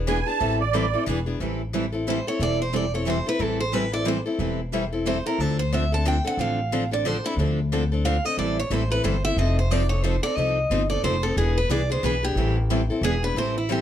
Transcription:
Already playing: E1
0.07 E3 B3 D4 G#4 B4 G#5
0.27 B3 D4 G#4 A5
0.40 A1 E3 G3 C4 E4 A4
0.60 D5
0.73 E3 G3 C4 E4 A4
0.94 C4 E4 A4
1.06 E1 E3 B3 D4 G#4 B4
1.26 B3 D4 G#4
1.40 A1 E3 G3 C4 E4 A4
1.73 E3 G3 C4 E4 A4
1.92 C4 E4 A4
2.08 E3 G3 C4 E4 A4 C5
2.27 C4 E4 A4 C#5
2.39 E1 E3 G3 C4 E4 A4 D5
2.62 C5
2.73 E3 G3 C4 E4 A4 D5
2.94 C4 E4 A4 C#5
3.07 E3 G3 C4 E4 A4 C5
3.26 C4 E4 A4 B4
3.39 A1 E3 G3 C4 E4 A4
3.60 C5
3.73 E3 G3 C4 E4 A4 B4
3.92 C4 E4 A4 D5
4.05 E3 G3 C4 E4 A4 C5
4.26 C4 E4 A4
4.39 E1 E3 G3 C4 E4 A4
4.73 E3 G3 C4 E4 A4
4.92 C4 E4 A4
5.06 E3 G3 C4 E4 A4 C5
5.26 C4 E4 A4 A#4
5.39 D2 D3 F3 C4 D4 A4
5.59 C5
5.72 D3 F3 C4 D4 A4 E5
5.92 C4 D4 A4 A5
6.05 D3 F3 C4 D4 A4 G5
6.24 C4 D4 A4 F#5
6.37 A1 D3 F3 C4 D4 A4 F5
6.72 D3 F3 C4 D4 A4
6.91 C4 D4 A4 D5
7.05 D3 F3 C4 D4 A4 C5
7.24 C4 D4 E4 A4
7.36 D2 D3 F3 C4 D4 A4
7.72 D3 F3 C4 D4 A4
7.92 C4 D4 A4
8.05 D3 F3 C4 D4 A4 F5
8.25 C4 D4 A4 D#5
8.37 A1 E3 G3 C4 E4 A4 D5
8.59 C#5
8.70 A1 E3 G3 C4 E4 A4 C5
8.90 C4 E4 A4 B4
9.04 G1 E3 G3 C4 E4 A4 C5
9.25 C4 E4 A4 E5
9.37 F1 F3 C4 D#4 A4 D#5
9.59 C5
9.71 F3 C4 D#4 A4 D5
9.89 C4 D#4 A4 C#5
10.03 F3 C4 D#4 A4 C5
10.23 C4 D#4 A4 D5
10.36 C2 F3 C4 D#4 A4 D#5
10.70 G1 F3 C4 D#4 A4
10.90 C4 D#4 A4 D5
11.03 F1 F3 C4 D#4 A4 C5
11.23 C4 D#4 A4
11.37 E1 E3 B3 D4 G#4 B4
11.58 B4
11.69 C2 E3 B3 D4 G#4 B4 D5
11.90 B3 D4 G#4 C5
12.03 B1 E3 B3 D4 G#4 B4
12.23 B3 D4 G4 G#4
12.35 A1 E3 G3 C4 E4 A4
12.70 E3 G3 C4 E4 A4
12.90 C4 E4 A4
13.01 E1 E3 B3 D4 G#4 B4
13.23 B3 D4 G#4 B4
13.35 A1 E3 G3 C4 E4 A4 C5
13.58 E4
13.69 E3 G3 C4 E4 G4 A4

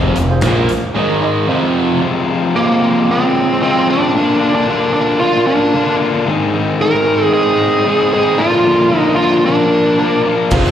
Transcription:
Already playing: F1 F2 C3 F3 F4 G#4 C5
0.16 F1 F2 C3, closed hi-hat
0.29 F4 G#4 C5
0.41 A#1 A#2, snare, closed hi-hat
0.46 F3 A#3
0.69 closed hi-hat
0.94 G#2 D#3 G#3 D#4 G#4 D#5
1.21 D#4 G#4 D#5 C6
1.47 F2 C3 F3 F4 G#4 C5 F5
2.01 F2 C3 F3 G#3 C4 F4
2.28 F3 G#3 C4 F4
2.56 F2 C3 F3 G#3 A#3 C4 F4
2.83 F3 G#3 C4 F4
3.11 C4
3.62 F3 G#3 C4 F4
3.89 F3 G#3 C4 D4 F4
4.14 A#2 D3 A#3 D4 F4
4.41 A#3 D4 F4
4.55 D4
4.68 A#2 D3 A#3 D4 F4
4.93 A#3 D4 F4
5.20 F4
5.47 D4
5.73 D3 A#3 D4 F4
6.01 A#3 D4 F4
6.26 G#2 D#3 G#3 C4 D#4 G#4
6.53 G#3 C4 D#4 G#4
6.80 G#2 D#3 G#3 C4 D#4 G#4 A#4
7.06 G#3 C4 D#4 G#4
7.34 G#4
7.86 G#3 C4 D#4 G#4
8.12 G#3 C4 D#4 G#4
8.38 A#2 D3 F3 A#3 D4 F4 A#4
8.66 F3 A#3 D4 A#4
8.92 A#2 D3 F3 A#3 D4 A#4
8.98 D#4
9.16 A#3 D4 F4 A#4
9.21 F3
9.46 D4
9.98 F3 A#3 D4 A#4
10.25 F3 A#3 D4 A#4
10.51 F1 F2 C3 F3 G#3 C4 F4 G#4 C5, kick, crash, shaker
10.65 closed hi-hat

